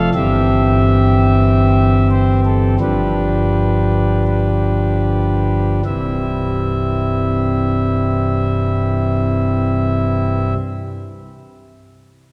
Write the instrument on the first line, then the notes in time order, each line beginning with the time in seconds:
pipe organ
Already playing: F1 F2 F3 A3 A4
0.14 G1 G2 E3 C4 G4 E5
2.11 C5
2.46 A4
2.80 G1 G2 F3 D4 G4 B4
4.27 B4
5.85 C1 C2 G2 E3 G3 C4 E4 E5